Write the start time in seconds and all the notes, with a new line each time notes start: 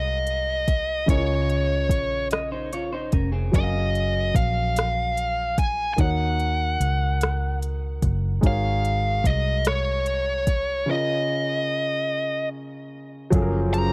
Already playing: C2 G#3 D#4 F#4 A#4 C#5 D#5
0.27 closed hi-hat
0.68 kick, closed hi-hat
1.06 C#2 C#3 C#4 E4 A#4 C#5, kick, closed hi-hat
1.11 F4 D#5
1.50 closed hi-hat
1.89 A#1, kick, closed hi-hat
2.31 D#5, cross-stick, closed hi-hat
2.52 D#4 C5
2.73 F4 C#5, closed hi-hat
2.93 D#4 C5
3.12 F1 C#4 A#4, kick, closed hi-hat
3.32 C4 G#4
3.52 F#1 F#3 C#4 G#4 D#5, kick, closed hi-hat
3.56 A#4 D#5
3.63 F5
3.95 closed hi-hat
4.35 A#1 F5, kick, closed hi-hat
4.76 cross-stick, closed hi-hat
5.17 closed hi-hat
5.58 G#5, kick, closed hi-hat
5.94 D#3 G#5
5.98 D#2 D#4 F#4 C#5 F#5, kick, closed hi-hat
6.40 closed hi-hat
6.80 C#2, closed hi-hat
7.21 cross-stick, closed hi-hat
7.62 closed hi-hat
8.02 F#1, kick, closed hi-hat
8.41 G#1 G#3 D#4 F#4 A#4, kick, closed hi-hat
8.46 C#5 F5
8.85 closed hi-hat
9.24 C2 D#5, kick, closed hi-hat
9.65 C#5, cross-stick, closed hi-hat
10.06 closed hi-hat
10.47 kick, closed hi-hat
10.86 C#3 C#4 F4 A#4
10.91 D#5
13.30 F#1 C#3 F3 F#3 A#3 C#4 G#4, kick, closed hi-hat
13.35 A4
13.42 A#4
13.74 A#5, closed hi-hat